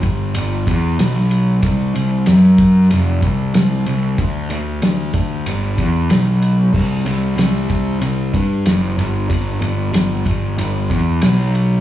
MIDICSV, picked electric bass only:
0, 0, Header, 1, 2, 480
1, 0, Start_track
1, 0, Key_signature, 1, "major"
1, 0, Tempo, 638978
1, 1223, Time_signature, 4, 2, 24, 8
1, 8868, End_track
2, 0, Start_track
2, 0, Title_t, "Picked electric bass"
2, 0, Program_c, 0, 34
2, 26, Note_on_c, 0, 31, 94
2, 251, Note_off_c, 0, 31, 0
2, 268, Note_on_c, 0, 31, 89
2, 491, Note_off_c, 0, 31, 0
2, 502, Note_on_c, 0, 40, 85
2, 728, Note_off_c, 0, 40, 0
2, 744, Note_on_c, 0, 35, 85
2, 1194, Note_off_c, 0, 35, 0
2, 1223, Note_on_c, 0, 36, 90
2, 1448, Note_off_c, 0, 36, 0
2, 1465, Note_on_c, 0, 36, 84
2, 1689, Note_off_c, 0, 36, 0
2, 1707, Note_on_c, 0, 42, 92
2, 2155, Note_off_c, 0, 42, 0
2, 2192, Note_on_c, 0, 29, 90
2, 2412, Note_off_c, 0, 29, 0
2, 2424, Note_on_c, 0, 36, 81
2, 2648, Note_off_c, 0, 36, 0
2, 2666, Note_on_c, 0, 36, 88
2, 2888, Note_off_c, 0, 36, 0
2, 2908, Note_on_c, 0, 36, 85
2, 3129, Note_off_c, 0, 36, 0
2, 3142, Note_on_c, 0, 38, 93
2, 3366, Note_off_c, 0, 38, 0
2, 3385, Note_on_c, 0, 38, 92
2, 3608, Note_off_c, 0, 38, 0
2, 3624, Note_on_c, 0, 38, 80
2, 3847, Note_off_c, 0, 38, 0
2, 3863, Note_on_c, 0, 38, 84
2, 4086, Note_off_c, 0, 38, 0
2, 4108, Note_on_c, 0, 31, 86
2, 4329, Note_off_c, 0, 31, 0
2, 4344, Note_on_c, 0, 40, 80
2, 4567, Note_off_c, 0, 40, 0
2, 4585, Note_on_c, 0, 35, 90
2, 5033, Note_off_c, 0, 35, 0
2, 5062, Note_on_c, 0, 36, 80
2, 5286, Note_off_c, 0, 36, 0
2, 5301, Note_on_c, 0, 36, 89
2, 5525, Note_off_c, 0, 36, 0
2, 5538, Note_on_c, 0, 36, 91
2, 5990, Note_off_c, 0, 36, 0
2, 6022, Note_on_c, 0, 36, 92
2, 6247, Note_off_c, 0, 36, 0
2, 6263, Note_on_c, 0, 43, 85
2, 6488, Note_off_c, 0, 43, 0
2, 6508, Note_on_c, 0, 30, 85
2, 6730, Note_off_c, 0, 30, 0
2, 6746, Note_on_c, 0, 31, 87
2, 6970, Note_off_c, 0, 31, 0
2, 6986, Note_on_c, 0, 31, 94
2, 7210, Note_off_c, 0, 31, 0
2, 7220, Note_on_c, 0, 31, 91
2, 7447, Note_off_c, 0, 31, 0
2, 7459, Note_on_c, 0, 31, 85
2, 7687, Note_off_c, 0, 31, 0
2, 7709, Note_on_c, 0, 31, 91
2, 7933, Note_off_c, 0, 31, 0
2, 7949, Note_on_c, 0, 31, 91
2, 8173, Note_off_c, 0, 31, 0
2, 8190, Note_on_c, 0, 40, 82
2, 8414, Note_off_c, 0, 40, 0
2, 8431, Note_on_c, 0, 35, 89
2, 8868, Note_off_c, 0, 35, 0
2, 8868, End_track
0, 0, End_of_file